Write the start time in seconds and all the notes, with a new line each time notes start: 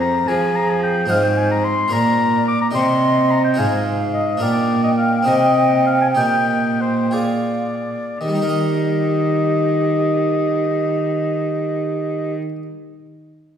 Already playing: F2 C4 G#4 C5 F5
0.01 A#5
0.28 F3 G#4 G#5
0.56 A#5
0.70 G#5
0.83 G5
1.06 C4 F4 D#5
1.10 G#2 C5 F5
1.24 G5
1.37 G#5
1.51 A#5
1.65 C6
1.88 F4 A#4 D5
1.92 A#2 D5 A#5
2.48 D6
2.62 A#5
2.71 D#4 G4 C5
2.75 C3 D#5 C6
3.31 A#5
3.44 G5
3.54 D#4 F4 C5
3.58 G#2 F5 G#5
4.14 D#5
4.37 D4 F4 A#4
4.42 A#2 D5 G5
4.84 D#5
4.98 F5
5.23 C3 C4 D#4 G4
5.27 C3 D#5
5.86 F5
6.02 G#5
6.15 A#2 D#4 G4 G5
6.81 C5
7.11 F4 G#4 D5 F5
8.20 D#3 G4 D#5
8.28 G3
8.35 D#4
8.42 A#4
8.49 D#5